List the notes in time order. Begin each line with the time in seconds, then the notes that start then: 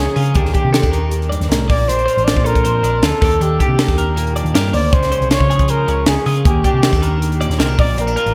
Already playing: C#3 F3 G#3 C#4 F4 C#5
0.00 G#4
0.16 C#3 F4 G#4, open hi-hat
0.26 closed hi-hat
0.34 D#2 D#3 A#3 D4 G4, kick, closed hi-hat
0.45 snare
0.53 D4 G4, kick, closed hi-hat
0.65 C3
0.73 C4 A4, snare, closed hi-hat
0.82 D#2 D4, kick, closed hi-hat
0.92 D#3 A#4, closed hi-hat
1.11 closed hi-hat
1.22 closed hi-hat
1.29 G2 D5, closed hi-hat
1.41 D#2, snare, closed hi-hat
1.49 C2 A2 A#4, snare, closed hi-hat
1.68 A#1 A#2 A#3 D5, kick, open hi-hat
1.88 A#1 D4 C5, closed hi-hat
1.99 closed hi-hat
2.06 F4 C5, closed hi-hat
2.17 A1, closed hi-hat
2.25 F3 D5, snare, closed hi-hat
2.37 A#2, kick
2.44 A4 A#4, closed hi-hat
2.55 kick, closed hi-hat
2.64 F2 C5, closed hi-hat
2.83 A#1 D4 D5, closed hi-hat
3.02 D2 F4 A4, snare, closed hi-hat
3.21 D#2 D#3 A#3 D4 G4 A4, kick, open hi-hat
3.32 closed hi-hat
3.41 D#2 D4 G4, closed hi-hat
3.59 D4 G4, kick, closed hi-hat
3.68 C3
3.79 D#3 A4, snare, closed hi-hat
3.88 D#2, kick, snare, closed hi-hat
3.98 A#4, closed hi-hat
4.16 A#2, closed hi-hat
4.27 closed hi-hat
4.36 D4 D5, closed hi-hat
4.44 D#2, closed hi-hat
4.54 G2 G4 A#4, snare, closed hi-hat
4.73 D2 D#2 A#3 C5 D5, open hi-hat
4.92 C#2 C#3 G#3 C5, kick, closed hi-hat
5.03 snare, closed hi-hat
5.12 C#4 C5, closed hi-hat
5.21 C2, closed hi-hat
5.31 F4 C#5, snare, closed hi-hat
5.40 C#3, kick
5.50 F3 G#4, closed hi-hat
5.59 kick, closed hi-hat
5.68 A#4 C5, closed hi-hat
5.88 C#2 C#3 C#5, closed hi-hat
6.06 C#2 C#4 G#4, snare, closed hi-hat
6.26 C#3 F4 G#4, open hi-hat
6.36 closed hi-hat
6.44 D#2 A#3 G4, kick, closed hi-hat
6.64 D4 G4, kick, closed hi-hat
6.73 C3
6.82 C4 A4, snare, closed hi-hat
6.93 D#2 D4, kick, snare, closed hi-hat
7.01 D#3 A#4, closed hi-hat
7.22 closed hi-hat
7.32 closed hi-hat
7.40 A#2 D5, closed hi-hat
7.49 D#2, snare, closed hi-hat
7.59 C2 C4 A#4, snare, closed hi-hat
7.69 D4
7.79 A#1 A#2 A#3 D5, kick, open hi-hat
7.98 A#1 C4 A#4, closed hi-hat
8.07 D4, closed hi-hat
8.16 F4 A#4, closed hi-hat
8.26 A1, closed hi-hat